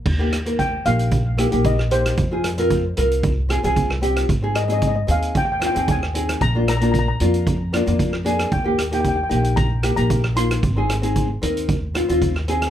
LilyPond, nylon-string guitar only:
\new Staff \with { instrumentName = "Nylon-string guitar" } { \time 4/4 \key ees \major \tempo 4 = 114 r16 <bes ees' g'>16 r16 <bes ees' bes'>8 r16 <bes ees' g'>8 r8 <bes ees' g'>16 <bes ees' g'>8 r16 <bes ees' g'>8 | r16 <c' f' aes'>16 r16 <c' f' bes'>8 r16 <c' f' bes'>8 r8 <c' f' aes'>16 <c' f' aes'>8 r16 <c' f' g'>8 | r16 <c' ees' aes'>16 r16 <c' ees' aes'>8 r16 <c' ees' aes'>8 r8 <c' ees' f'>16 <c' ees' aes'>8 r16 <c' ees' aes'>8 | r16 <bes d' f'>16 r16 <bes d' f'>8 r16 <bes d' f'>8 r8 <bes d' f'>16 <bes d' f'>8 r16 <bes d' aes'>8 |
r16 <bes ees' g'>16 r16 <bes ees' g'>8 r16 <bes ees' g'>8 r8 <bes ees' g'>16 <bes ees' g'>8 r16 <bes ees' f'>8 | r16 <c' ees' aes'>16 r16 <c' ees' aes'>8 r16 <c' ees' bes'>8 r8 <c' ees' f'>16 <c' ees' f'>8 r16 <c' ees' aes'>8 | }